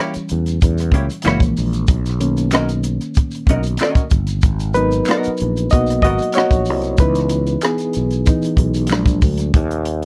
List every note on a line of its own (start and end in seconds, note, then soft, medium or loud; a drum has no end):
0.00 1.20 E3 soft
0.00 1.20 G3 soft
0.00 0.12 A#3 medium
0.00 1.21 C#4 medium
0.00 0.13 E4 medium
0.00 0.13 G4 medium
0.00 0.13 C#5 medium
0.14 muted fretless electric bass stroke soft
0.14 closed hi-hat soft
0.14 maracas soft
0.29 0.58 E2 medium
0.29 closed hi-hat medium
0.29 maracas soft
0.46 closed hi-hat soft
0.46 maracas soft
0.61 0.90 E2 medium
0.61 kick medium
0.61 closed hi-hat medium
0.61 maracas medium
0.78 cross-stick soft
0.78 closed hi-hat soft
0.78 maracas soft
0.92 1.08 C#2 medium
0.92 1.05 A#3 medium
0.92 1.05 E4 medium
0.92 1.05 G4 medium
0.92 1.06 C#5 medium
0.92 kick medium
0.92 closed hi-hat medium
1.10 closed hi-hat soft
1.10 maracas soft
1.22 1.40 F#1 medium
1.22 1.67 E3 medium
1.22 1.68 G#3 soft
1.22 1.68 A#3 medium
1.22 1.40 A#3 medium
1.22 1.40 E4 medium
1.22 finger snap medium
1.22 closed hi-hat medium
1.22 maracas medium
1.26 1.40 F#4 medium
1.26 1.40 C#5 medium
1.26 cross-stick medium
1.40 1.54 A#1 medium
1.40 kick medium
1.40 closed hi-hat soft
1.40 maracas soft
1.57 1.86 A#1 medium
1.57 open hi-hat soft
1.57 maracas soft
1.73 closed hi-hat soft
1.73 maracas soft
1.87 2.98 B1 loud
1.87 kick loud
1.87 closed hi-hat medium
1.87 maracas medium
2.06 cross-stick soft
2.06 closed hi-hat soft
2.06 maracas soft
2.20 4.39 D#3 soft
2.20 4.39 A#3 soft
2.20 4.40 C#4 medium
2.20 closed hi-hat medium
2.20 maracas soft
2.37 closed hi-hat soft
2.37 maracas soft
2.51 2.67 C#4 medium
2.51 2.68 F#4 medium
2.51 2.68 A#4 medium
2.51 2.68 D#5 medium
2.51 finger snap medium
2.51 cross-stick loud
2.51 closed hi-hat medium
2.51 maracas medium
2.69 closed hi-hat soft
2.69 maracas soft
2.83 closed hi-hat medium
2.83 maracas soft
3.01 closed hi-hat soft
3.01 maracas soft
3.15 kick loud
3.15 closed hi-hat medium
3.15 maracas medium
3.31 closed hi-hat soft
3.31 maracas soft
3.47 3.76 B1 medium
3.47 3.60 C#4 medium
3.47 3.61 F#4 medium
3.47 3.61 D#5 medium
3.47 kick medium
3.47 closed hi-hat medium
3.51 3.61 A#4 medium
3.63 closed hi-hat soft
3.63 maracas soft
3.77 4.01 C#4 medium
3.77 finger snap medium
3.77 closed hi-hat medium
3.77 maracas medium
3.81 4.01 F#4 medium
3.81 4.01 A#4 medium
3.81 4.02 D#5 medium
3.81 cross-stick medium
3.95 kick medium
3.95 closed hi-hat soft
3.95 maracas soft
4.10 4.40 G1 medium
4.10 kick medium
4.10 closed hi-hat medium
4.10 maracas soft
4.27 closed hi-hat soft
4.27 maracas soft
4.42 5.00 G#1 loud
4.42 kick loud
4.42 closed hi-hat medium
4.42 maracas medium
4.59 closed hi-hat soft
4.59 maracas soft
4.74 5.67 F#3 medium
4.74 5.68 B3 medium
4.74 5.68 D#4 medium
4.74 5.67 A#4 soft
4.74 5.73 B4 medium
4.74 closed hi-hat medium
4.74 maracas soft
4.91 closed hi-hat soft
4.91 maracas soft
5.05 5.29 B3 medium
5.05 5.29 F#4 medium
5.05 finger snap medium
5.05 closed hi-hat medium
5.05 maracas medium
5.10 5.29 A#4 medium
5.10 5.30 D#5 medium
5.10 cross-stick loud
5.24 muted fretless electric bass stroke soft
5.24 closed hi-hat soft
5.24 maracas soft
5.37 closed hi-hat medium
5.37 maracas soft
5.42 5.69 A#1 medium
5.56 closed hi-hat soft
5.56 maracas soft
5.70 6.01 B1 medium
5.70 6.00 F#3 soft
5.70 6.00 A#3 soft
5.70 6.01 B3 soft
5.70 6.02 F#4 medium
5.70 6.01 D#5 loud
5.70 kick medium
5.70 closed hi-hat medium
5.70 maracas medium
5.86 cross-stick soft
5.86 closed hi-hat medium
5.86 maracas soft
6.02 6.18 G#1 medium
6.02 6.16 B3 medium
6.02 6.33 F#4 medium
6.02 6.36 D#5 loud
6.02 kick medium
6.02 closed hi-hat medium
6.06 6.16 F#4 medium
6.06 6.16 A#4 medium
6.06 6.17 D#5 medium
6.18 closed hi-hat soft
6.18 maracas soft
6.32 7.01 C#5 medium
6.32 finger snap medium
6.32 closed hi-hat medium
6.32 maracas medium
6.37 6.51 B3 medium
6.37 6.51 F#4 medium
6.37 6.96 F#4 medium
6.37 6.51 A#4 medium
6.37 6.52 D#5 medium
6.37 cross-stick medium
6.51 6.70 A#1 medium
6.51 kick medium
6.51 closed hi-hat soft
6.51 maracas soft
6.65 open hi-hat soft
6.65 maracas soft
6.70 6.97 C2 medium
6.82 closed hi-hat soft
6.82 maracas soft
6.97 7.55 C#2 loud
6.97 7.91 E3 medium
6.97 7.63 B3 soft
6.97 7.92 D#4 medium
6.97 7.60 E4 medium
6.97 7.65 B4 medium
6.97 kick loud
6.97 closed hi-hat medium
6.97 maracas medium
7.15 closed hi-hat soft
7.15 maracas soft
7.19 cross-stick soft
7.29 closed hi-hat medium
7.29 maracas soft
7.47 closed hi-hat soft
7.47 maracas soft
7.61 8.23 B3 medium
7.61 8.22 G#4 medium
7.61 finger snap medium
7.61 cross-stick loud
7.61 closed hi-hat medium
7.61 maracas medium
7.78 closed hi-hat soft
7.78 maracas soft
7.93 8.24 B1 medium
7.93 closed hi-hat medium
7.93 maracas soft
8.11 closed hi-hat soft
8.11 maracas soft
8.26 8.56 E3 soft
8.26 8.56 B3 soft
8.26 8.56 D#4 medium
8.26 kick medium
8.26 closed hi-hat medium
8.26 maracas medium
8.42 closed hi-hat soft
8.42 maracas soft
8.57 8.92 B1 medium
8.57 kick medium
8.57 closed hi-hat medium
8.74 closed hi-hat soft
8.74 maracas soft
8.87 9.33 F#3 medium
8.87 finger snap medium
8.87 closed hi-hat medium
8.87 maracas medium
8.91 9.19 A#1 loud
8.91 9.34 G#3 soft
8.91 9.34 D4 medium
8.91 cross-stick medium
9.06 kick medium
9.06 closed hi-hat soft
9.06 maracas soft
9.22 9.51 D2 medium
9.22 kick medium
9.22 open hi-hat soft
9.22 maracas soft
9.38 closed hi-hat soft
9.38 maracas soft
9.54 10.05 D#2 loud
9.54 kick loud
9.54 closed hi-hat medium
9.71 closed hi-hat soft
9.85 closed hi-hat medium